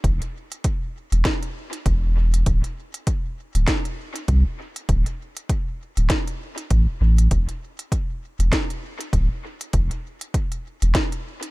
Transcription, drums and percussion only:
0.04 kick, closed hi-hat
0.22 closed hi-hat
0.52 closed hi-hat
0.64 kick, closed hi-hat
1.12 closed hi-hat
1.25 kick, snare, closed hi-hat
1.43 closed hi-hat
1.73 closed hi-hat
1.86 kick, closed hi-hat
2.34 closed hi-hat
2.46 kick, closed hi-hat
2.64 closed hi-hat
2.94 closed hi-hat
3.07 kick, closed hi-hat
3.55 closed hi-hat
3.67 kick, snare, closed hi-hat
3.85 closed hi-hat
4.16 closed hi-hat
4.28 kick, closed hi-hat
4.76 closed hi-hat
4.89 kick, closed hi-hat
5.06 closed hi-hat
5.37 closed hi-hat
5.49 kick, closed hi-hat
5.97 closed hi-hat
6.10 kick, snare, closed hi-hat
6.27 closed hi-hat
6.58 closed hi-hat
6.71 kick, closed hi-hat
7.18 closed hi-hat
7.31 kick, closed hi-hat
7.49 closed hi-hat
7.79 closed hi-hat
7.92 kick, closed hi-hat
8.40 closed hi-hat
8.52 kick, snare, closed hi-hat
8.70 closed hi-hat
9.01 closed hi-hat
9.13 kick, closed hi-hat
9.61 closed hi-hat
9.73 kick, closed hi-hat
9.91 closed hi-hat
10.21 closed hi-hat
10.34 kick, closed hi-hat
10.52 closed hi-hat
10.82 closed hi-hat
10.95 kick, snare, closed hi-hat
11.12 closed hi-hat
11.43 closed hi-hat

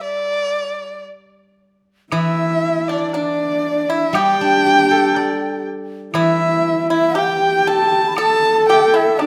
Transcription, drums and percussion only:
2.12 high woodblock
3.13 low woodblock
4.14 high woodblock
5.15 low woodblock
6.14 high woodblock
7.14 low woodblock
8.17 high woodblock
9.19 high woodblock, low woodblock

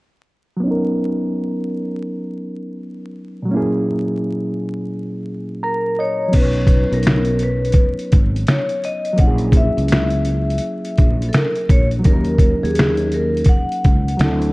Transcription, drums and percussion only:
6.33 kick, closed hi-hat, crash
6.53 closed hi-hat
6.67 kick, closed hi-hat
6.93 closed hi-hat
7.03 closed hi-hat
7.07 finger snap, snare
7.25 closed hi-hat
7.39 closed hi-hat
7.65 closed hi-hat
7.72 kick, closed hi-hat
7.99 closed hi-hat
8.12 kick, closed hi-hat
8.36 closed hi-hat
8.47 finger snap, snare, closed hi-hat
8.69 closed hi-hat
8.84 closed hi-hat
9.05 closed hi-hat
9.18 kick, closed hi-hat
9.38 closed hi-hat
9.52 kick, closed hi-hat
9.78 closed hi-hat
9.88 finger snap, closed hi-hat
9.92 snare
10.10 closed hi-hat
10.25 closed hi-hat
10.50 closed hi-hat
10.58 closed hi-hat
10.85 closed hi-hat
10.98 kick, closed hi-hat
11.22 closed hi-hat
11.33 finger snap, snare, closed hi-hat
11.55 closed hi-hat
11.69 kick, closed hi-hat
11.91 closed hi-hat
12.04 kick, closed hi-hat
12.25 closed hi-hat
12.38 kick, closed hi-hat
12.65 closed hi-hat
12.75 finger snap, closed hi-hat
12.79 snare
12.97 closed hi-hat
13.12 closed hi-hat
13.37 closed hi-hat
13.44 kick, closed hi-hat
13.72 closed hi-hat
13.84 kick, closed hi-hat
14.08 closed hi-hat
14.19 finger snap, snare, closed hi-hat
14.42 closed hi-hat

